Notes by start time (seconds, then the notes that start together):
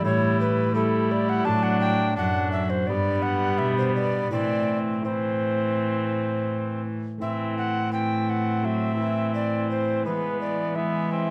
0.02 A2 G3 A3 E4 G4 C#5
0.40 B4
0.74 G3 E4 A4
1.11 D5
1.29 F#5
1.45 A2 F#3 A3 D4 A5
1.63 F#5
1.81 G5
2.16 F#2 F#3 D4 F#5
2.52 E5
2.70 C5
2.86 G2 G3 B3 D4 G4 D5
3.22 F#5
3.58 B2 E5
3.78 C5
3.95 D5
4.30 A2 E3 A3 C4 E4 D5
5.01 E3 A3 C4 E4 C5
7.17 A2 A3 C4 E4 E5
7.22 A2 E3
7.58 F#5
7.93 E3 C4 G5
8.30 F#5
8.61 F#3 A3 C4 E4 E5
8.99 E3
9.35 D5
9.71 C5
10.03 E3 G#3 B3 E4 B4
10.07 E3
10.41 D5
10.75 G#3 B3 E4 E5
11.13 C4